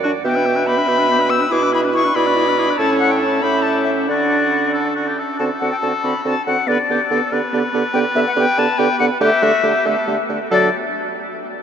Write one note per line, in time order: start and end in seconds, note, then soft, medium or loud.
0.00 0.14 F#2 medium
0.00 0.11 F#4 medium
0.00 0.24 D5 loud
0.05 0.12 D4 medium
0.24 0.80 B2 loud
0.24 0.38 B3 medium
0.24 0.37 G4 medium
0.24 1.84 E5 loud
0.24 0.68 G5 loud
0.35 0.47 D4 medium
0.35 0.47 B4 medium
0.46 0.58 B3 medium
0.46 0.57 G4 medium
0.55 0.66 D4 medium
0.55 0.66 B4 medium
0.67 0.79 B3 medium
0.67 0.79 G4 medium
0.67 1.31 B5 loud
0.78 0.89 D4 medium
0.78 0.90 B4 medium
0.87 1.44 B2 loud
0.87 1.00 B3 medium
0.87 1.00 G4 medium
0.99 1.09 D4 medium
0.99 1.09 B4 medium
1.10 1.21 B3 medium
1.10 1.22 G4 medium
1.19 1.31 D4 medium
1.19 1.32 B4 medium
1.29 1.42 B3 medium
1.29 1.43 G4 medium
1.29 1.53 E6 loud
1.40 1.49 D4 medium
1.40 1.50 B4 medium
1.50 2.08 B2 loud
1.50 1.63 E4 medium
1.50 1.64 G#4 medium
1.50 1.73 D6 loud
1.61 1.74 D4 medium
1.61 1.74 B4 medium
1.72 1.84 E4 medium
1.72 1.86 G#4 medium
1.72 1.81 B5 loud
1.83 1.92 D4 medium
1.83 1.95 B4 medium
1.93 2.06 E4 medium
1.93 2.06 G#4 medium
1.93 2.17 C#6 loud
2.04 2.16 D4 medium
2.04 2.18 B4 medium
2.14 2.72 B2 loud
2.14 2.27 E4 medium
2.14 2.28 G#4 medium
2.14 2.80 D5 loud
2.14 2.79 B5 loud
2.26 2.35 D4 medium
2.26 2.37 B4 medium
2.35 2.47 E4 medium
2.35 2.51 G#4 medium
2.46 2.59 D4 medium
2.46 2.60 B4 medium
2.57 2.70 E4 medium
2.57 2.72 G#4 medium
2.68 2.78 D4 medium
2.68 2.79 B4 medium
2.78 3.39 A2 loud
2.78 3.39 C#4 medium
2.78 3.45 A4 loud
2.78 3.43 C#5 loud
2.78 2.99 A5 loud
2.99 3.13 F#5 loud
3.11 3.21 G5 medium
3.19 3.44 A5 loud
3.42 4.08 A2 medium
3.42 4.10 C#4 medium
3.42 4.09 G4 medium
3.42 4.07 E5 loud
3.42 3.64 B5 loud
3.62 3.84 A5 loud
3.84 3.90 E5 loud
4.06 5.16 D3 medium
4.06 5.18 D4 medium
4.06 4.70 F#4 medium
4.06 5.15 D5 loud
4.06 5.05 F#5 medium
4.74 4.94 A4 medium
4.96 5.10 F#4 medium
5.08 5.20 G4 medium
5.18 5.39 A4 medium
5.39 5.49 D3 medium
5.39 5.50 C4 medium
5.39 5.49 F#4 medium
5.39 6.64 A4 loud
5.39 5.45 A5 loud
5.60 5.71 D3 medium
5.60 5.71 C4 medium
5.60 5.72 F#4 medium
5.60 5.71 F#5 loud
5.72 5.77 G5 loud
5.82 5.92 D3 medium
5.82 5.92 C4 medium
5.82 5.93 F#4 medium
5.82 5.88 A5 loud
6.03 6.14 D3 medium
6.03 6.14 C4 medium
6.03 6.14 F#4 medium
6.03 6.24 B5 loud
6.25 6.35 D3 medium
6.25 6.35 C4 medium
6.25 6.35 F#4 medium
6.25 6.46 A5 loud
6.46 6.57 D3 medium
6.46 6.57 C4 medium
6.46 6.57 F#4 medium
6.46 6.69 F#5 loud
6.67 6.78 D3 medium
6.67 6.77 B3 medium
6.67 6.78 G4 medium
6.67 6.79 B4 loud
6.67 7.73 D5 loud
6.89 6.99 D3 medium
6.89 6.99 B3 medium
6.89 6.99 G4 medium
6.89 7.00 G4 medium
7.10 7.20 D3 medium
7.10 7.21 B3 medium
7.10 7.20 G4 medium
7.10 7.34 A4 medium
7.31 7.41 D3 medium
7.31 7.41 B3 medium
7.31 7.41 G4 medium
7.31 9.20 B4 loud
7.53 7.63 D3 medium
7.53 7.62 B3 medium
7.53 7.62 G4 medium
7.73 7.84 D3 medium
7.73 7.83 B3 medium
7.73 7.83 G4 medium
7.93 8.04 D3 loud
7.93 8.03 B3 medium
7.93 8.03 G4 medium
7.93 7.99 G5 loud
8.15 8.25 D3 loud
8.15 8.25 B3 medium
8.15 8.25 G4 medium
8.15 8.20 E5 loud
8.27 8.32 F#5 loud
8.36 8.46 D3 loud
8.36 8.46 B3 medium
8.36 8.46 G4 medium
8.36 8.60 G5 loud
8.57 8.67 D3 loud
8.57 8.68 B3 medium
8.57 8.67 G4 medium
8.57 8.80 A5 loud
8.78 8.88 D3 loud
8.78 8.88 B3 loud
8.78 8.88 G4 medium
8.78 8.99 G5 loud
8.98 9.10 D3 loud
8.98 9.09 B3 medium
8.98 9.08 G4 medium
8.98 9.06 F#5 loud
9.20 9.30 D3 loud
9.20 9.30 A3 loud
9.20 9.30 G4 loud
9.20 9.44 G4 loud
9.20 10.27 E5 loud
9.41 9.52 D3 loud
9.41 9.52 A3 medium
9.41 9.65 F#4 loud
9.41 9.51 G4 medium
9.63 9.73 D3 loud
9.63 9.74 A3 medium
9.63 9.73 G4 medium
9.63 9.87 G4 loud
9.84 9.95 D3 loud
9.84 9.96 A3 medium
9.84 9.94 G4 medium
9.84 10.19 A4 medium
10.07 10.17 D3 medium
10.07 10.18 A3 medium
10.07 10.17 G4 medium
10.29 10.39 D3 medium
10.29 10.39 A3 medium
10.29 10.39 G4 medium
10.51 10.69 D3 loud
10.51 10.70 F#3 medium
10.51 10.69 D4 loud
10.51 10.69 A4 loud
10.51 10.76 D5 loud